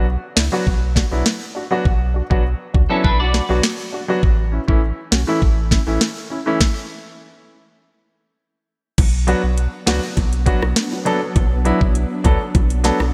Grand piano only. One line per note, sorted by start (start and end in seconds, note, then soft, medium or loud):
0.36 0.43 D4 soft
0.36 0.43 E4 medium
0.52 0.63 F#3 medium
0.52 0.64 B3 medium
0.52 0.64 D4 medium
0.52 0.64 F#4 medium
0.95 1.02 D4 soft
0.95 1.03 F#4 medium
1.11 1.23 F#3 medium
1.11 1.23 B3 medium
1.11 1.23 D4 medium
1.11 1.23 E4 medium
1.55 1.62 D4 soft
1.55 1.62 F#4 medium
1.71 1.82 F#3 medium
1.71 1.82 B3 medium
1.71 1.83 D4 medium
1.71 1.83 F#4 medium
2.14 2.21 D4 soft
2.14 2.22 F#4 medium
2.30 2.42 F#3 medium
2.30 2.42 B3 medium
2.30 2.42 D4 medium
2.30 2.42 F#4 medium
2.74 2.80 D4 soft
2.74 2.81 F#4 medium
2.89 3.01 F#3 medium
2.89 3.01 B3 medium
2.89 3.01 D4 medium
2.89 3.02 E4 medium
3.33 3.40 D4 medium
3.33 3.40 F#4 medium
3.49 3.60 F#3 medium
3.49 3.61 B3 medium
3.49 3.61 D4 medium
3.49 3.61 F#4 medium
3.93 3.99 D4 medium
3.93 4.00 F#4 medium
4.08 4.20 F#3 medium
4.08 4.20 B3 medium
4.08 4.20 D4 medium
4.08 4.21 F#4 medium
4.52 4.59 C#4 soft
4.52 4.59 E4 medium
4.68 4.79 E3 medium
4.68 4.79 A3 medium
4.68 4.80 C#4 medium
4.68 4.80 E4 medium
5.11 5.18 C#4 soft
5.11 5.19 F#4 medium
5.27 5.39 E3 medium
5.27 5.39 A3 medium
5.27 5.39 C#4 medium
5.27 5.39 E4 medium
5.71 5.77 C#4 soft
5.71 5.78 E4 medium
5.87 5.98 E3 medium
5.87 5.98 A3 medium
5.87 5.99 C#4 medium
5.87 5.99 E4 medium
6.30 6.37 C#4 medium
6.30 6.38 E4 medium
6.46 6.57 E3 medium
6.46 6.58 A3 medium
6.46 6.58 C#4 medium
6.46 6.58 E4 medium
9.27 9.40 F#3 medium
9.27 9.40 B3 medium
9.27 9.41 D4 medium
9.27 9.41 F#4 medium
9.86 9.99 F#3 medium
9.86 10.00 B3 medium
9.86 10.00 D4 medium
9.86 10.00 F#4 medium
10.46 10.59 F#3 medium
10.46 10.59 B3 medium
10.46 10.59 D4 medium
10.46 10.60 F#4 loud
11.05 11.18 F#3 medium
11.05 11.18 B3 medium
11.05 11.19 D4 medium
11.05 11.19 A4 loud
11.65 11.78 F#3 medium
11.65 11.78 B3 medium
11.65 11.78 D4 medium
11.65 11.78 E4 medium
12.24 12.37 F#3 medium
12.24 12.37 B3 medium
12.24 12.38 D4 medium
12.24 12.38 A4 loud
12.84 12.97 F#3 medium
12.84 12.97 B3 medium
12.84 12.97 D4 medium
12.84 12.97 A4 medium